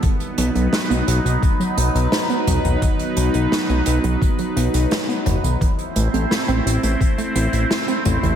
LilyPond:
<<
  \new Staff \with { instrumentName = "Analog synth pad" } { \time 4/4 \key b \phrygian \tempo 4 = 86 <fis b dis' b'>1~ | <fis b dis' b'>1 | <a c' e' c''>1 | }
  \new Staff \with { instrumentName = "Synth arpeggio sound" } { \time 4/4 \key b \phrygian dis16 r16 fis16 b16 dis'16 b16 r16 fis16 dis16 fis16 b16 r16 dis'16 b16 fis16 dis16 | dis16 r16 fis16 b16 dis'16 b16 r16 fis16 dis16 fis16 b16 r16 dis'16 b16 fis16 dis16 | e16 r16 a16 c'16 e'16 c'16 r16 a16 e16 a16 c'16 r16 e'16 c'16 a16 e16 | }
  \new Staff \with { instrumentName = "Analog synth bass" } { \clef bass \time 4/4 \key b \phrygian r8 b,,16 b,,16 r16 b,,16 b,,16 b,,16 r8 b,,16 b,,16 r8 b,,16 b,,16 | r8 b,,16 b,,16 r16 b,,16 b,,16 b,,16 r8 b,,16 b,,16 r8 fis,,16 b,,16 | r8 a,,16 a,,16 r16 a,,16 a,,16 a,,16 r8 a,,16 a,,16 r8 a,,16 a,,16 | }
  \new DrumStaff \with { instrumentName = "Drums" } \drummode { \time 4/4 <hh bd>16 hh16 hh16 hh16 <hh sn>16 hh16 hh16 hh16 <hh bd>16 hh16 hh16 hh16 <hh sn>16 hh16 <hh toml>16 <hh toml>16 | <hh bd>16 hh16 hh16 hh16 <hh sn>16 hh16 hh16 hh16 <hh bd>16 hh16 hh16 hh16 <hh sn>16 hh16 <hh toml>16 hh16 | <hh bd>16 hh16 hh16 hh16 <hh sn>16 hh16 hh16 hh16 <hh bd>16 hh16 hh16 hh16 <hh sn>16 hh16 <hh toml>16 <hh toml>16 | }
>>